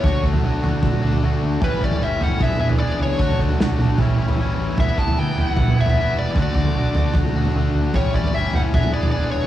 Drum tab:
SD |----------------|----------------|----o-----------|----------------|
T2 |--------oo------|--------oo------|------o-o-------|--------oo------|
FT |o--o--o-o--o----|o--o--o-o--o----|oo-o-oo-o--o----|o--o--o-o--o----|
BD |o-o-----o-------|o-o-----o-------|o-o-----o-------|o-o-----o-------|

SD |----------------|----------------|
T2 |--------oo------|--------oo------|
FT |o--o--o-o--o----|o--o--o-o--o----|
BD |o-o-----o-------|o-o-----o-------|